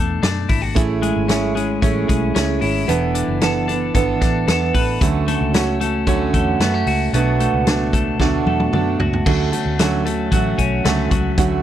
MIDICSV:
0, 0, Header, 1, 5, 480
1, 0, Start_track
1, 0, Tempo, 530973
1, 689, Time_signature, 4, 2, 24, 8
1, 10508, End_track
2, 0, Start_track
2, 0, Title_t, "Steel-string acoustic guitar"
2, 0, Program_c, 0, 25
2, 676, Note_on_c, 0, 57, 83
2, 681, Note_on_c, 0, 61, 86
2, 688, Note_on_c, 0, 64, 89
2, 692, Note_on_c, 0, 68, 92
2, 1155, Note_off_c, 0, 61, 0
2, 1156, Note_off_c, 0, 57, 0
2, 1160, Note_on_c, 0, 57, 57
2, 1166, Note_on_c, 0, 61, 62
2, 1168, Note_off_c, 0, 68, 0
2, 1171, Note_off_c, 0, 64, 0
2, 1174, Note_on_c, 0, 64, 68
2, 1179, Note_on_c, 0, 68, 62
2, 1393, Note_off_c, 0, 68, 0
2, 1402, Note_off_c, 0, 64, 0
2, 1403, Note_on_c, 0, 68, 49
2, 1405, Note_off_c, 0, 57, 0
2, 1408, Note_off_c, 0, 61, 0
2, 1413, Note_on_c, 0, 64, 53
2, 1424, Note_on_c, 0, 61, 42
2, 1639, Note_off_c, 0, 61, 0
2, 1644, Note_off_c, 0, 64, 0
2, 1646, Note_on_c, 0, 57, 85
2, 1647, Note_off_c, 0, 68, 0
2, 1650, Note_on_c, 0, 61, 78
2, 1654, Note_on_c, 0, 64, 87
2, 1661, Note_on_c, 0, 68, 99
2, 2116, Note_off_c, 0, 61, 0
2, 2120, Note_off_c, 0, 57, 0
2, 2123, Note_on_c, 0, 57, 61
2, 2127, Note_on_c, 0, 61, 62
2, 2128, Note_off_c, 0, 68, 0
2, 2132, Note_off_c, 0, 64, 0
2, 2136, Note_on_c, 0, 64, 66
2, 2139, Note_on_c, 0, 68, 71
2, 2352, Note_off_c, 0, 68, 0
2, 2363, Note_on_c, 0, 68, 51
2, 2364, Note_off_c, 0, 64, 0
2, 2367, Note_off_c, 0, 57, 0
2, 2369, Note_off_c, 0, 61, 0
2, 2375, Note_on_c, 0, 64, 46
2, 2380, Note_on_c, 0, 61, 38
2, 2599, Note_on_c, 0, 52, 77
2, 2602, Note_off_c, 0, 61, 0
2, 2603, Note_off_c, 0, 64, 0
2, 2606, Note_on_c, 0, 59, 83
2, 2607, Note_off_c, 0, 68, 0
2, 2607, Note_on_c, 0, 62, 80
2, 2612, Note_on_c, 0, 69, 85
2, 3071, Note_off_c, 0, 52, 0
2, 3078, Note_off_c, 0, 59, 0
2, 3081, Note_on_c, 0, 52, 57
2, 3089, Note_on_c, 0, 59, 61
2, 3094, Note_off_c, 0, 62, 0
2, 3097, Note_on_c, 0, 62, 62
2, 3100, Note_off_c, 0, 69, 0
2, 3104, Note_on_c, 0, 69, 64
2, 3316, Note_off_c, 0, 69, 0
2, 3324, Note_off_c, 0, 62, 0
2, 3327, Note_off_c, 0, 52, 0
2, 3327, Note_on_c, 0, 69, 53
2, 3331, Note_off_c, 0, 59, 0
2, 3335, Note_on_c, 0, 62, 47
2, 3346, Note_on_c, 0, 59, 48
2, 3561, Note_off_c, 0, 59, 0
2, 3565, Note_on_c, 0, 52, 90
2, 3567, Note_off_c, 0, 62, 0
2, 3570, Note_off_c, 0, 69, 0
2, 3572, Note_on_c, 0, 59, 89
2, 3577, Note_on_c, 0, 62, 92
2, 3580, Note_on_c, 0, 69, 95
2, 4034, Note_off_c, 0, 52, 0
2, 4044, Note_off_c, 0, 59, 0
2, 4045, Note_on_c, 0, 52, 65
2, 4053, Note_off_c, 0, 62, 0
2, 4055, Note_on_c, 0, 59, 73
2, 4057, Note_on_c, 0, 62, 69
2, 4060, Note_off_c, 0, 69, 0
2, 4064, Note_on_c, 0, 69, 76
2, 4526, Note_on_c, 0, 50, 75
2, 4529, Note_off_c, 0, 52, 0
2, 4533, Note_off_c, 0, 59, 0
2, 4533, Note_off_c, 0, 62, 0
2, 4533, Note_on_c, 0, 54, 77
2, 4536, Note_on_c, 0, 61, 86
2, 4537, Note_off_c, 0, 69, 0
2, 4537, Note_on_c, 0, 57, 86
2, 4541, Note_on_c, 0, 66, 90
2, 5000, Note_off_c, 0, 54, 0
2, 5004, Note_on_c, 0, 54, 61
2, 5010, Note_off_c, 0, 57, 0
2, 5012, Note_off_c, 0, 61, 0
2, 5014, Note_on_c, 0, 57, 54
2, 5020, Note_off_c, 0, 66, 0
2, 5023, Note_on_c, 0, 61, 69
2, 5023, Note_on_c, 0, 66, 69
2, 5050, Note_off_c, 0, 50, 0
2, 5238, Note_off_c, 0, 66, 0
2, 5248, Note_off_c, 0, 54, 0
2, 5249, Note_off_c, 0, 61, 0
2, 5249, Note_on_c, 0, 66, 52
2, 5253, Note_off_c, 0, 57, 0
2, 5260, Note_on_c, 0, 61, 49
2, 5270, Note_on_c, 0, 57, 42
2, 5482, Note_off_c, 0, 57, 0
2, 5483, Note_on_c, 0, 50, 79
2, 5488, Note_off_c, 0, 61, 0
2, 5491, Note_off_c, 0, 66, 0
2, 5492, Note_on_c, 0, 54, 77
2, 5493, Note_on_c, 0, 57, 91
2, 5499, Note_on_c, 0, 61, 88
2, 5501, Note_on_c, 0, 66, 97
2, 5964, Note_off_c, 0, 54, 0
2, 5968, Note_on_c, 0, 54, 58
2, 5976, Note_off_c, 0, 57, 0
2, 5976, Note_off_c, 0, 61, 0
2, 5980, Note_on_c, 0, 57, 67
2, 5985, Note_on_c, 0, 61, 66
2, 5986, Note_off_c, 0, 66, 0
2, 5989, Note_on_c, 0, 66, 65
2, 6012, Note_off_c, 0, 50, 0
2, 6452, Note_on_c, 0, 47, 82
2, 6455, Note_off_c, 0, 57, 0
2, 6456, Note_off_c, 0, 54, 0
2, 6458, Note_off_c, 0, 61, 0
2, 6459, Note_on_c, 0, 57, 74
2, 6460, Note_on_c, 0, 54, 86
2, 6461, Note_on_c, 0, 62, 86
2, 6464, Note_off_c, 0, 66, 0
2, 6467, Note_on_c, 0, 66, 82
2, 6926, Note_off_c, 0, 54, 0
2, 6930, Note_on_c, 0, 54, 55
2, 6932, Note_off_c, 0, 47, 0
2, 6935, Note_off_c, 0, 57, 0
2, 6939, Note_on_c, 0, 57, 57
2, 6941, Note_off_c, 0, 62, 0
2, 6945, Note_on_c, 0, 62, 64
2, 6948, Note_off_c, 0, 66, 0
2, 6952, Note_on_c, 0, 66, 71
2, 7409, Note_off_c, 0, 57, 0
2, 7410, Note_off_c, 0, 54, 0
2, 7410, Note_on_c, 0, 47, 89
2, 7413, Note_on_c, 0, 57, 82
2, 7414, Note_off_c, 0, 62, 0
2, 7414, Note_on_c, 0, 54, 81
2, 7417, Note_on_c, 0, 62, 86
2, 7418, Note_off_c, 0, 66, 0
2, 7421, Note_on_c, 0, 66, 98
2, 7886, Note_off_c, 0, 54, 0
2, 7890, Note_off_c, 0, 47, 0
2, 7890, Note_on_c, 0, 54, 70
2, 7898, Note_off_c, 0, 57, 0
2, 7901, Note_on_c, 0, 57, 61
2, 7902, Note_off_c, 0, 62, 0
2, 7906, Note_off_c, 0, 66, 0
2, 7906, Note_on_c, 0, 62, 76
2, 7909, Note_on_c, 0, 66, 74
2, 8117, Note_off_c, 0, 66, 0
2, 8127, Note_off_c, 0, 62, 0
2, 8128, Note_on_c, 0, 66, 47
2, 8130, Note_off_c, 0, 54, 0
2, 8136, Note_off_c, 0, 57, 0
2, 8138, Note_on_c, 0, 62, 40
2, 8150, Note_on_c, 0, 57, 38
2, 8367, Note_off_c, 0, 57, 0
2, 8369, Note_off_c, 0, 66, 0
2, 8372, Note_on_c, 0, 50, 78
2, 8374, Note_off_c, 0, 62, 0
2, 8375, Note_on_c, 0, 54, 73
2, 8378, Note_on_c, 0, 57, 90
2, 8382, Note_on_c, 0, 61, 81
2, 8385, Note_on_c, 0, 66, 87
2, 8596, Note_off_c, 0, 66, 0
2, 8607, Note_on_c, 0, 66, 51
2, 8609, Note_off_c, 0, 61, 0
2, 8611, Note_off_c, 0, 50, 0
2, 8613, Note_off_c, 0, 54, 0
2, 8614, Note_off_c, 0, 57, 0
2, 8620, Note_on_c, 0, 61, 51
2, 8627, Note_on_c, 0, 57, 39
2, 8846, Note_off_c, 0, 57, 0
2, 8848, Note_off_c, 0, 66, 0
2, 8851, Note_off_c, 0, 61, 0
2, 8853, Note_on_c, 0, 50, 78
2, 8857, Note_on_c, 0, 54, 83
2, 8857, Note_on_c, 0, 57, 84
2, 8862, Note_on_c, 0, 61, 84
2, 8866, Note_on_c, 0, 66, 84
2, 9076, Note_off_c, 0, 66, 0
2, 9086, Note_off_c, 0, 61, 0
2, 9086, Note_on_c, 0, 66, 57
2, 9091, Note_off_c, 0, 50, 0
2, 9093, Note_off_c, 0, 54, 0
2, 9093, Note_off_c, 0, 57, 0
2, 9097, Note_on_c, 0, 61, 50
2, 9103, Note_on_c, 0, 57, 47
2, 9328, Note_off_c, 0, 66, 0
2, 9328, Note_on_c, 0, 54, 63
2, 9329, Note_off_c, 0, 57, 0
2, 9331, Note_off_c, 0, 61, 0
2, 9340, Note_on_c, 0, 57, 73
2, 9342, Note_on_c, 0, 61, 63
2, 9349, Note_on_c, 0, 66, 80
2, 9808, Note_off_c, 0, 54, 0
2, 9808, Note_on_c, 0, 50, 77
2, 9809, Note_off_c, 0, 57, 0
2, 9812, Note_on_c, 0, 54, 85
2, 9813, Note_on_c, 0, 57, 92
2, 9816, Note_off_c, 0, 61, 0
2, 9817, Note_off_c, 0, 66, 0
2, 9820, Note_on_c, 0, 61, 97
2, 9820, Note_on_c, 0, 66, 97
2, 10026, Note_off_c, 0, 66, 0
2, 10037, Note_on_c, 0, 66, 52
2, 10040, Note_off_c, 0, 61, 0
2, 10046, Note_off_c, 0, 57, 0
2, 10048, Note_off_c, 0, 50, 0
2, 10050, Note_off_c, 0, 54, 0
2, 10051, Note_on_c, 0, 61, 49
2, 10057, Note_on_c, 0, 57, 45
2, 10275, Note_off_c, 0, 57, 0
2, 10282, Note_off_c, 0, 61, 0
2, 10283, Note_off_c, 0, 66, 0
2, 10283, Note_on_c, 0, 50, 83
2, 10284, Note_on_c, 0, 54, 80
2, 10286, Note_on_c, 0, 57, 85
2, 10293, Note_on_c, 0, 61, 97
2, 10296, Note_on_c, 0, 66, 87
2, 10505, Note_off_c, 0, 66, 0
2, 10508, Note_off_c, 0, 50, 0
2, 10508, Note_off_c, 0, 54, 0
2, 10508, Note_off_c, 0, 57, 0
2, 10508, Note_off_c, 0, 61, 0
2, 10508, End_track
3, 0, Start_track
3, 0, Title_t, "Clean electric guitar"
3, 0, Program_c, 1, 27
3, 0, Note_on_c, 1, 47, 72
3, 0, Note_on_c, 1, 57, 53
3, 0, Note_on_c, 1, 62, 57
3, 0, Note_on_c, 1, 66, 57
3, 195, Note_off_c, 1, 62, 0
3, 205, Note_on_c, 1, 62, 57
3, 441, Note_off_c, 1, 66, 0
3, 444, Note_on_c, 1, 64, 61
3, 559, Note_off_c, 1, 64, 0
3, 559, Note_on_c, 1, 66, 53
3, 691, Note_off_c, 1, 47, 0
3, 733, Note_off_c, 1, 66, 0
3, 736, Note_off_c, 1, 62, 0
3, 921, Note_off_c, 1, 57, 0
3, 925, Note_on_c, 1, 56, 58
3, 1393, Note_off_c, 1, 56, 0
3, 1404, Note_on_c, 1, 56, 58
3, 1872, Note_off_c, 1, 56, 0
3, 1883, Note_on_c, 1, 56, 56
3, 2655, Note_off_c, 1, 56, 0
3, 2845, Note_on_c, 1, 62, 56
3, 3322, Note_off_c, 1, 62, 0
3, 3807, Note_on_c, 1, 62, 61
3, 4291, Note_on_c, 1, 71, 65
3, 4580, Note_off_c, 1, 71, 0
3, 4773, Note_on_c, 1, 57, 57
3, 5010, Note_off_c, 1, 62, 0
3, 5246, Note_off_c, 1, 57, 0
3, 5730, Note_on_c, 1, 57, 59
3, 5971, Note_on_c, 1, 59, 57
3, 6094, Note_off_c, 1, 59, 0
3, 6094, Note_on_c, 1, 61, 48
3, 6215, Note_on_c, 1, 66, 61
3, 6501, Note_off_c, 1, 61, 0
3, 6686, Note_off_c, 1, 57, 0
3, 6690, Note_on_c, 1, 57, 52
3, 7166, Note_off_c, 1, 57, 0
3, 7170, Note_on_c, 1, 57, 58
3, 7654, Note_off_c, 1, 57, 0
3, 7658, Note_on_c, 1, 57, 52
3, 8131, Note_off_c, 1, 66, 0
3, 8848, Note_off_c, 1, 57, 0
3, 9563, Note_on_c, 1, 61, 55
3, 10044, Note_on_c, 1, 54, 54
3, 10508, Note_off_c, 1, 54, 0
3, 10508, Note_off_c, 1, 61, 0
3, 10508, End_track
4, 0, Start_track
4, 0, Title_t, "Fingered electric bass"
4, 0, Program_c, 2, 33
4, 0, Note_on_c, 2, 40, 82
4, 172, Note_off_c, 2, 40, 0
4, 205, Note_on_c, 2, 42, 77
4, 411, Note_off_c, 2, 42, 0
4, 448, Note_on_c, 2, 32, 83
4, 653, Note_off_c, 2, 32, 0
4, 689, Note_on_c, 2, 33, 94
4, 996, Note_off_c, 2, 33, 0
4, 1051, Note_on_c, 2, 32, 83
4, 1621, Note_off_c, 2, 32, 0
4, 1650, Note_on_c, 2, 33, 91
4, 1854, Note_off_c, 2, 33, 0
4, 1891, Note_on_c, 2, 35, 76
4, 2095, Note_off_c, 2, 35, 0
4, 2130, Note_on_c, 2, 37, 79
4, 2335, Note_off_c, 2, 37, 0
4, 2366, Note_on_c, 2, 32, 90
4, 2573, Note_off_c, 2, 32, 0
4, 2608, Note_on_c, 2, 28, 97
4, 2916, Note_off_c, 2, 28, 0
4, 2966, Note_on_c, 2, 30, 75
4, 3539, Note_off_c, 2, 30, 0
4, 3570, Note_on_c, 2, 32, 91
4, 3775, Note_off_c, 2, 32, 0
4, 3811, Note_on_c, 2, 33, 71
4, 4016, Note_off_c, 2, 33, 0
4, 4046, Note_on_c, 2, 40, 99
4, 4253, Note_off_c, 2, 40, 0
4, 4289, Note_on_c, 2, 33, 96
4, 4495, Note_off_c, 2, 33, 0
4, 4532, Note_on_c, 2, 38, 97
4, 4838, Note_off_c, 2, 38, 0
4, 4889, Note_on_c, 2, 37, 81
4, 5461, Note_off_c, 2, 37, 0
4, 5486, Note_on_c, 2, 38, 95
4, 5693, Note_off_c, 2, 38, 0
4, 5730, Note_on_c, 2, 40, 84
4, 5935, Note_off_c, 2, 40, 0
4, 5963, Note_on_c, 2, 42, 91
4, 6171, Note_off_c, 2, 42, 0
4, 6201, Note_on_c, 2, 37, 92
4, 6410, Note_off_c, 2, 37, 0
4, 6445, Note_on_c, 2, 35, 103
4, 6754, Note_off_c, 2, 35, 0
4, 6806, Note_on_c, 2, 37, 80
4, 7378, Note_off_c, 2, 37, 0
4, 7408, Note_on_c, 2, 38, 85
4, 7613, Note_off_c, 2, 38, 0
4, 7648, Note_on_c, 2, 40, 85
4, 7853, Note_off_c, 2, 40, 0
4, 7890, Note_on_c, 2, 42, 81
4, 8094, Note_off_c, 2, 42, 0
4, 8133, Note_on_c, 2, 37, 82
4, 8336, Note_off_c, 2, 37, 0
4, 8371, Note_on_c, 2, 38, 97
4, 8575, Note_off_c, 2, 38, 0
4, 8729, Note_on_c, 2, 38, 89
4, 9299, Note_off_c, 2, 38, 0
4, 9328, Note_on_c, 2, 33, 94
4, 9532, Note_off_c, 2, 33, 0
4, 9569, Note_on_c, 2, 35, 78
4, 9773, Note_off_c, 2, 35, 0
4, 9807, Note_on_c, 2, 37, 92
4, 10012, Note_off_c, 2, 37, 0
4, 10047, Note_on_c, 2, 37, 93
4, 10251, Note_off_c, 2, 37, 0
4, 10285, Note_on_c, 2, 38, 93
4, 10491, Note_off_c, 2, 38, 0
4, 10508, End_track
5, 0, Start_track
5, 0, Title_t, "Drums"
5, 209, Note_on_c, 9, 42, 81
5, 210, Note_on_c, 9, 38, 96
5, 299, Note_off_c, 9, 42, 0
5, 301, Note_off_c, 9, 38, 0
5, 443, Note_on_c, 9, 46, 69
5, 448, Note_on_c, 9, 36, 87
5, 533, Note_off_c, 9, 46, 0
5, 538, Note_off_c, 9, 36, 0
5, 689, Note_on_c, 9, 36, 111
5, 690, Note_on_c, 9, 42, 94
5, 780, Note_off_c, 9, 36, 0
5, 780, Note_off_c, 9, 42, 0
5, 928, Note_on_c, 9, 42, 64
5, 1019, Note_off_c, 9, 42, 0
5, 1167, Note_on_c, 9, 42, 85
5, 1172, Note_on_c, 9, 38, 88
5, 1257, Note_off_c, 9, 42, 0
5, 1263, Note_off_c, 9, 38, 0
5, 1418, Note_on_c, 9, 42, 75
5, 1509, Note_off_c, 9, 42, 0
5, 1649, Note_on_c, 9, 36, 83
5, 1652, Note_on_c, 9, 42, 71
5, 1739, Note_off_c, 9, 36, 0
5, 1742, Note_off_c, 9, 42, 0
5, 1892, Note_on_c, 9, 36, 76
5, 1892, Note_on_c, 9, 42, 67
5, 1982, Note_off_c, 9, 36, 0
5, 1983, Note_off_c, 9, 42, 0
5, 2131, Note_on_c, 9, 42, 91
5, 2132, Note_on_c, 9, 38, 98
5, 2221, Note_off_c, 9, 42, 0
5, 2223, Note_off_c, 9, 38, 0
5, 2363, Note_on_c, 9, 46, 74
5, 2454, Note_off_c, 9, 46, 0
5, 2610, Note_on_c, 9, 42, 94
5, 2700, Note_off_c, 9, 42, 0
5, 2846, Note_on_c, 9, 42, 69
5, 2937, Note_off_c, 9, 42, 0
5, 3086, Note_on_c, 9, 42, 81
5, 3091, Note_on_c, 9, 38, 88
5, 3176, Note_off_c, 9, 42, 0
5, 3181, Note_off_c, 9, 38, 0
5, 3335, Note_on_c, 9, 42, 71
5, 3425, Note_off_c, 9, 42, 0
5, 3568, Note_on_c, 9, 36, 80
5, 3568, Note_on_c, 9, 42, 79
5, 3659, Note_off_c, 9, 36, 0
5, 3659, Note_off_c, 9, 42, 0
5, 3809, Note_on_c, 9, 38, 30
5, 3810, Note_on_c, 9, 42, 70
5, 3812, Note_on_c, 9, 36, 80
5, 3899, Note_off_c, 9, 38, 0
5, 3900, Note_off_c, 9, 42, 0
5, 3902, Note_off_c, 9, 36, 0
5, 4051, Note_on_c, 9, 42, 93
5, 4053, Note_on_c, 9, 38, 97
5, 4142, Note_off_c, 9, 42, 0
5, 4143, Note_off_c, 9, 38, 0
5, 4288, Note_on_c, 9, 46, 69
5, 4290, Note_on_c, 9, 36, 86
5, 4379, Note_off_c, 9, 46, 0
5, 4381, Note_off_c, 9, 36, 0
5, 4531, Note_on_c, 9, 36, 110
5, 4532, Note_on_c, 9, 42, 93
5, 4622, Note_off_c, 9, 36, 0
5, 4622, Note_off_c, 9, 42, 0
5, 4771, Note_on_c, 9, 42, 66
5, 4861, Note_off_c, 9, 42, 0
5, 5009, Note_on_c, 9, 42, 86
5, 5014, Note_on_c, 9, 38, 100
5, 5099, Note_off_c, 9, 42, 0
5, 5104, Note_off_c, 9, 38, 0
5, 5253, Note_on_c, 9, 42, 74
5, 5343, Note_off_c, 9, 42, 0
5, 5487, Note_on_c, 9, 36, 81
5, 5487, Note_on_c, 9, 42, 77
5, 5578, Note_off_c, 9, 36, 0
5, 5578, Note_off_c, 9, 42, 0
5, 5728, Note_on_c, 9, 42, 71
5, 5730, Note_on_c, 9, 36, 77
5, 5819, Note_off_c, 9, 42, 0
5, 5821, Note_off_c, 9, 36, 0
5, 5969, Note_on_c, 9, 42, 80
5, 5971, Note_on_c, 9, 38, 89
5, 6060, Note_off_c, 9, 42, 0
5, 6061, Note_off_c, 9, 38, 0
5, 6207, Note_on_c, 9, 46, 65
5, 6298, Note_off_c, 9, 46, 0
5, 6454, Note_on_c, 9, 42, 94
5, 6544, Note_off_c, 9, 42, 0
5, 6692, Note_on_c, 9, 42, 70
5, 6782, Note_off_c, 9, 42, 0
5, 6931, Note_on_c, 9, 42, 80
5, 6936, Note_on_c, 9, 38, 94
5, 7021, Note_off_c, 9, 42, 0
5, 7026, Note_off_c, 9, 38, 0
5, 7171, Note_on_c, 9, 36, 88
5, 7177, Note_on_c, 9, 42, 74
5, 7261, Note_off_c, 9, 36, 0
5, 7267, Note_off_c, 9, 42, 0
5, 7409, Note_on_c, 9, 36, 77
5, 7414, Note_on_c, 9, 38, 50
5, 7500, Note_off_c, 9, 36, 0
5, 7505, Note_off_c, 9, 38, 0
5, 7653, Note_on_c, 9, 48, 59
5, 7743, Note_off_c, 9, 48, 0
5, 7774, Note_on_c, 9, 48, 56
5, 7864, Note_off_c, 9, 48, 0
5, 7893, Note_on_c, 9, 47, 76
5, 7983, Note_off_c, 9, 47, 0
5, 8134, Note_on_c, 9, 43, 84
5, 8224, Note_off_c, 9, 43, 0
5, 8257, Note_on_c, 9, 43, 76
5, 8347, Note_off_c, 9, 43, 0
5, 8373, Note_on_c, 9, 36, 106
5, 8376, Note_on_c, 9, 49, 96
5, 8464, Note_off_c, 9, 36, 0
5, 8466, Note_off_c, 9, 49, 0
5, 8613, Note_on_c, 9, 42, 68
5, 8703, Note_off_c, 9, 42, 0
5, 8851, Note_on_c, 9, 42, 93
5, 8857, Note_on_c, 9, 38, 94
5, 8942, Note_off_c, 9, 42, 0
5, 8947, Note_off_c, 9, 38, 0
5, 9097, Note_on_c, 9, 42, 77
5, 9188, Note_off_c, 9, 42, 0
5, 9328, Note_on_c, 9, 36, 80
5, 9329, Note_on_c, 9, 42, 79
5, 9418, Note_off_c, 9, 36, 0
5, 9419, Note_off_c, 9, 42, 0
5, 9570, Note_on_c, 9, 36, 71
5, 9571, Note_on_c, 9, 42, 70
5, 9661, Note_off_c, 9, 36, 0
5, 9662, Note_off_c, 9, 42, 0
5, 9810, Note_on_c, 9, 42, 93
5, 9812, Note_on_c, 9, 38, 102
5, 9901, Note_off_c, 9, 42, 0
5, 9902, Note_off_c, 9, 38, 0
5, 10044, Note_on_c, 9, 42, 76
5, 10046, Note_on_c, 9, 36, 91
5, 10134, Note_off_c, 9, 42, 0
5, 10137, Note_off_c, 9, 36, 0
5, 10284, Note_on_c, 9, 42, 94
5, 10286, Note_on_c, 9, 36, 117
5, 10375, Note_off_c, 9, 42, 0
5, 10376, Note_off_c, 9, 36, 0
5, 10508, End_track
0, 0, End_of_file